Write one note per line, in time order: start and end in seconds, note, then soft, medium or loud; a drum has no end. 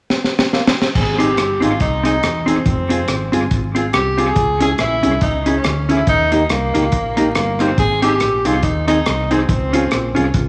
0.10 snare medium
0.24 snare medium
0.39 snare medium
0.53 0.64 A#3 medium
0.53 snare medium
0.67 snare medium
0.78 0.97 C4 medium
0.78 snare medium
0.95 1.32 G#1 loud
0.95 1.18 G#4 loud
0.95 kick loud
0.95 crash medium
1.18 1.28 C4 medium
1.18 1.29 D#4 medium
1.18 1.65 G4 loud
1.18 1.29 G#4 medium
1.18 closed hi-hat medium
1.37 1.59 G1 medium
1.37 cross-stick loud
1.37 closed hi-hat medium
1.60 1.78 G#1 medium
1.60 1.71 C4 medium
1.60 1.71 D#4 medium
1.60 1.81 F4 medium
1.60 1.72 G#4 medium
1.60 closed hi-hat medium
1.80 2.17 C2 medium
1.80 2.04 D#4 medium
1.80 kick loud
1.80 closed hi-hat medium
2.03 2.13 C4 medium
2.03 2.14 D#4 medium
2.03 2.49 D#4 loud
2.03 2.15 G#4 medium
2.03 cross-stick medium
2.03 closed hi-hat medium
2.23 2.59 E1 loud
2.23 cross-stick loud
2.23 closed hi-hat medium
2.46 2.56 C4 medium
2.46 2.66 C4 medium
2.46 2.57 D#4 medium
2.46 2.57 G#4 medium
2.46 closed hi-hat medium
2.66 3.02 F1 loud
2.66 3.48 C4 medium
2.66 kick loud
2.66 closed hi-hat medium
2.89 2.99 C4 medium
2.89 3.00 F4 medium
2.89 3.00 G#4 medium
2.89 closed hi-hat medium
3.08 3.29 G#1 medium
3.08 cross-stick medium
3.08 closed hi-hat medium
3.32 3.49 G1 medium
3.32 3.42 C4 medium
3.32 3.42 F4 medium
3.32 3.43 G#4 loud
3.32 closed hi-hat medium
3.51 3.88 G#1 medium
3.51 kick loud
3.51 closed hi-hat medium
3.75 3.84 C4 medium
3.75 3.85 F4 medium
3.75 3.85 G#4 medium
3.75 closed hi-hat medium
3.93 4.30 C2 medium
3.93 4.29 G4 loud
3.93 cross-stick loud
3.93 closed hi-hat medium
4.17 4.27 C4 medium
4.17 4.28 F4 medium
4.17 4.28 G#4 medium
4.17 closed hi-hat medium
4.27 4.61 G#4 loud
4.36 4.73 C#2 loud
4.36 kick loud
4.36 closed hi-hat medium
4.60 4.70 C#4 medium
4.60 4.71 E4 medium
4.60 4.70 G#4 loud
4.60 4.71 G#4 medium
4.60 closed hi-hat loud
4.78 5.00 A#1 medium
4.78 5.19 E4 loud
4.78 cross-stick loud
4.78 closed hi-hat medium
5.03 5.19 C2 medium
5.03 5.13 C#4 medium
5.03 5.13 E4 medium
5.03 5.14 G#4 medium
5.03 closed hi-hat medium
5.21 5.58 C#2 medium
5.21 5.53 D#4 medium
5.21 kick loud
5.21 closed hi-hat medium
5.46 5.55 C#4 medium
5.46 5.56 E4 medium
5.46 5.56 G#4 medium
5.46 closed hi-hat medium
5.57 5.88 C#4 medium
5.64 6.01 D2 medium
5.64 cross-stick loud
5.64 closed hi-hat medium
5.89 5.98 C#4 medium
5.89 5.99 E4 medium
5.89 6.07 E4 loud
5.89 5.99 G#4 medium
5.89 closed hi-hat medium
6.07 6.44 D#2 loud
6.07 6.31 D#4 loud
6.07 kick loud
6.07 closed hi-hat medium
6.32 6.41 A#3 medium
6.32 6.49 D#4 medium
6.32 6.41 D#4 medium
6.32 6.42 G4 medium
6.32 closed hi-hat medium
6.50 6.71 C2 medium
6.50 7.32 A#3 medium
6.50 cross-stick loud
6.50 closed hi-hat medium
6.74 6.90 C#2 medium
6.74 6.84 A#3 medium
6.74 6.84 D#4 medium
6.74 6.84 G4 medium
6.74 closed hi-hat medium
6.92 7.29 A#1 medium
6.92 kick loud
6.92 closed hi-hat medium
7.17 7.26 A#3 medium
7.17 7.27 D#4 medium
7.17 7.27 G4 medium
7.17 closed hi-hat medium
7.35 7.72 G1 loud
7.35 7.58 A#3 medium
7.35 cross-stick loud
7.35 closed hi-hat medium
7.59 7.69 A#3 medium
7.59 7.77 C4 medium
7.59 7.70 D#4 medium
7.59 7.70 G4 medium
7.59 cross-stick medium
7.59 closed hi-hat medium
7.78 8.23 G#1 medium
7.78 8.01 G#4 loud
7.78 kick loud
7.78 closed hi-hat medium
8.02 8.12 C4 medium
8.02 8.12 D#4 medium
8.02 8.47 G4 loud
8.02 8.13 G#4 loud
8.02 closed hi-hat medium
8.20 8.46 A#1 medium
8.20 cross-stick medium
8.20 closed hi-hat medium
8.45 8.61 C2 medium
8.45 8.55 C4 medium
8.45 8.55 D#4 medium
8.45 8.63 F4 loud
8.45 8.55 G#4 medium
8.45 closed hi-hat medium
8.63 9.00 D#2 medium
8.63 8.86 D#4 medium
8.63 kick loud
8.63 closed hi-hat medium
8.87 8.97 C4 medium
8.87 9.27 D#4 loud
8.87 8.98 D#4 medium
8.87 8.98 G#4 medium
8.87 cross-stick medium
8.87 closed hi-hat medium
9.06 9.43 C2 medium
9.06 cross-stick loud
9.06 closed hi-hat medium
9.31 9.40 C4 medium
9.31 9.39 C4 medium
9.31 9.40 D#4 medium
9.31 9.41 G#4 medium
9.31 closed hi-hat medium
9.49 9.85 C#2 loud
9.49 10.31 C4 loud
9.49 kick loud
9.49 closed hi-hat medium
9.73 9.83 C#4 medium
9.73 9.83 F4 medium
9.73 9.84 G#4 medium
9.73 closed hi-hat medium
9.91 10.13 A#1 medium
9.91 cross-stick medium
9.91 closed hi-hat medium
10.15 10.32 C2 medium
10.15 10.25 C#4 medium
10.15 10.25 F4 medium
10.15 10.26 G#4 medium
10.15 closed hi-hat medium
10.34 10.48 C#2 medium
10.34 kick loud
10.34 closed hi-hat medium